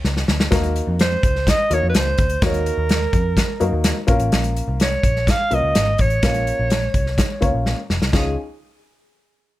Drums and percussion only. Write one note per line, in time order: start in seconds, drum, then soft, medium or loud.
0.05 snare medium
0.17 snare medium
0.28 snare loud
0.40 snare loud
0.52 kick loud
0.52 snare loud
0.52 closed hi-hat loud
0.64 closed hi-hat soft
0.76 closed hi-hat medium
0.99 snare loud
0.99 closed hi-hat medium
1.23 kick loud
1.23 closed hi-hat medium
1.36 snare soft
1.47 kick medium
1.47 snare loud
1.47 closed hi-hat loud
1.71 closed hi-hat medium
1.95 snare loud
1.95 closed hi-hat loud
2.18 kick loud
2.18 closed hi-hat medium
2.30 closed hi-hat soft
2.42 kick loud
2.42 snare loud
2.42 closed hi-hat loud
2.54 closed hi-hat medium
2.66 closed hi-hat medium
2.89 snare loud
2.89 closed hi-hat medium
3.13 kick medium
3.13 closed hi-hat medium
3.37 kick medium
3.37 snare loud
3.37 closed hi-hat medium
3.61 closed hi-hat medium
3.84 snare loud
3.84 closed hi-hat loud
4.08 kick loud
4.08 closed hi-hat medium
4.20 closed hi-hat soft
4.32 snare loud
4.32 closed hi-hat medium
4.44 closed hi-hat soft
4.56 closed hi-hat medium
4.80 snare loud
4.80 closed hi-hat medium
5.03 kick medium
5.03 closed hi-hat medium
5.16 snare soft
5.27 kick medium
5.27 snare medium
5.27 closed hi-hat medium
5.51 closed hi-hat medium
5.75 snare loud
5.75 closed hi-hat loud
5.98 kick medium
5.98 closed hi-hat medium
6.10 closed hi-hat soft
6.23 kick loud
6.23 snare loud
6.23 closed hi-hat loud
6.34 closed hi-hat soft
6.47 closed hi-hat medium
6.70 snare loud
6.70 closed hi-hat medium
6.94 kick loud
6.94 closed hi-hat medium
7.07 snare soft
7.18 kick medium
7.18 snare loud
7.18 closed hi-hat loud
7.42 kick medium
7.42 closed hi-hat medium
7.66 snare medium
7.90 snare medium
8.02 snare medium
8.13 kick loud
8.13 snare medium
8.13 crash medium